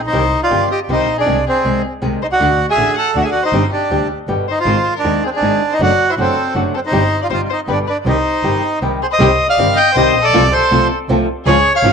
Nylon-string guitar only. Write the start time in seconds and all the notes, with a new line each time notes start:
0.13 C3 D#3 G3 C4 G4
0.50 C3 D#3 G3 C4 G4
0.89 C3 D#3 G3 C4 G4
1.26 C3 D#3 G#3 C4 G#4
1.65 C3 D#3 G#3 C4 G#4
2.02 C3 D#3 G#3 C4 G#4
2.40 D3 A3 D4 F#4
2.77 D3 A3 D4 F#4
3.15 D3 A3 D4 F#4
3.53 C3 G3 C4 D4 G4
3.91 C3 G3 C4 D4 G4
4.28 B2 D3 G3 B3 G4
4.65 D#3 G#3 C4 D#4 G#4
5.04 D#3 G#3 C4 D#4 G#4
5.42 D#3 G#3 C4 D#4 G#4
5.80 C3 F#3 A3 D4 F#4
6.17 C3 F#3 A3 D4 F#4
6.54 C3 F#3 A3 D4 F#4
6.92 C3 G3 C4 D#4 G4
7.29 C3 G3 C4 D#4 G4
7.67 B2 D3 G3 B3 G4
8.06 C3 D#3 G3 C4 G4
8.43 C3 D#3 G3 C4 G4
8.82 C3 D#3 G3 C4 G4
9.19 C3 D#3 G3 C4 G4
9.58 C3 D#3 G3 C4 G4
9.96 C3 D#3 G3 C4 G4
10.33 C3 F3 A3 C4 F4
10.71 C3 F3 A3 C4 F4
11.09 C3 F3 A3 C4 F4
11.47 C#3 F3 G#3 C#4 F4
11.84 C#3 F3 G#3 C#4 F4